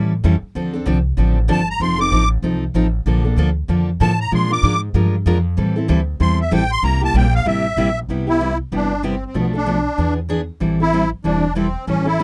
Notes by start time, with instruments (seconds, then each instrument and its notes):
Already playing: upright bass A2, steel-string acoustic guitar E3 G3 C#4 E4 A4
0.24 upright bass F2, steel-string acoustic guitar E3 G3 C#4 E4 A4
0.42 muted upright bass stroke
0.55 upright bass D2, steel-string acoustic guitar D3 F3 C4 D4 A4
0.73 steel-string acoustic guitar C4 D4 A4
0.86 upright bass C2, steel-string acoustic guitar D3 F3 C4 D4 A4
1.17 upright bass A1, steel-string acoustic guitar D3 F3 C4 D4 A4
1.48 upright bass G1, steel-string acoustic guitar D3 F3 C4 D4 A4, accordion A5
1.70 accordion A#5
1.80 upright bass F1, steel-string acoustic guitar F3 C4 D#4 A4, accordion C6
1.98 steel-string acoustic guitar C4 D#4 A4, accordion D6
2.12 upright bass A1, steel-string acoustic guitar F3 C4 D#4 A4
2.42 upright bass C2, steel-string acoustic guitar F3 C4 D#4 A4
2.74 upright bass A1, steel-string acoustic guitar F3 C4 D#4 A4
3.06 upright bass A#1, steel-string acoustic guitar D3 F3 A#3 D4 A4
3.25 steel-string acoustic guitar A#3 D4 A4
3.36 upright bass D2, steel-string acoustic guitar D3 F3 A#3 D4 A4
3.68 upright bass F2, steel-string acoustic guitar D3 F3 A#3 D4 A4
4.00 upright bass A2, steel-string acoustic guitar D3 F3 A#3 D4 A4, accordion A5
4.20 accordion A#5
4.31 upright bass A#2, steel-string acoustic guitar F3 G#3 D4 F4 A#4, accordion C6
4.50 steel-string acoustic guitar D4 F4 A#4, accordion D6
4.63 upright bass G#2, steel-string acoustic guitar F3 G#3 D4 F4 A#4
4.94 upright bass G2, steel-string acoustic guitar F3 G#3 D4 F4 A#4
5.26 upright bass F2, steel-string acoustic guitar F3 G#3 D4 F4 A#4
5.57 upright bass A2, steel-string acoustic guitar E3 G3 C4 E4 A4
5.76 steel-string acoustic guitar C4 E4 A4
5.88 upright bass D2, steel-string acoustic guitar E3 G3 C4 E4 A4
6.20 upright bass E2, steel-string acoustic guitar E3 G3 C4 E4 A4, accordion C6
6.41 accordion E5
6.51 upright bass A1, steel-string acoustic guitar E3 G3 C4 E4 A4, accordion G5
6.72 accordion C6
6.83 upright bass C2, steel-string acoustic guitar C3 G3 A#3 E4 G4, accordion A#5
7.01 steel-string acoustic guitar A#3 E4 G4, accordion A5
7.14 upright bass A#1, steel-string acoustic guitar C3 G3 A#3 E4 G4, accordion G5
7.35 accordion F5
7.45 upright bass A1, steel-string acoustic guitar C3 G3 A#3 E4 G4, accordion E5
7.77 upright bass A#1, steel-string acoustic guitar C3 G3 A#3 E4 G4
8.09 upright bass C2, steel-string acoustic guitar C3 G3 B3 E4 G4
8.27 steel-string acoustic guitar B3 E4 G4, accordion E4
8.40 steel-string acoustic guitar C3 G3 B3 E4 G4
8.72 upright bass G1, steel-string acoustic guitar C3 G3 B3 E4 G4, accordion D4
9.03 steel-string acoustic guitar C3 G3 B3 E4 G4, accordion C4
9.26 accordion C4
9.34 upright bass B1, steel-string acoustic guitar B2 F3 A3 D4 A4
9.39 accordion B3
9.53 steel-string acoustic guitar A3 D4 A4, accordion D4
9.66 steel-string acoustic guitar B2 F3 A3 D4 A4
9.98 upright bass E2, steel-string acoustic guitar E3 B3 D4 G#4
10.29 steel-string acoustic guitar E3 B3 D4 G#4
10.60 upright bass A1, steel-string acoustic guitar E3 G3 C4 E4 A4
10.80 steel-string acoustic guitar C4 E4 A4, accordion E4
10.93 steel-string acoustic guitar E3 G3 C4 E4 A4
11.24 upright bass E1, steel-string acoustic guitar E3 G3 C4 E4 A4, accordion D4
11.55 steel-string acoustic guitar E3 G3 C4 E4 A4, accordion C4
11.87 upright bass A1, steel-string acoustic guitar E3 G3 C#4 E4 A4, accordion C#4
12.06 steel-string acoustic guitar C#4 E4 A4, accordion E4
12.19 steel-string acoustic guitar E3 G3 C#4 E4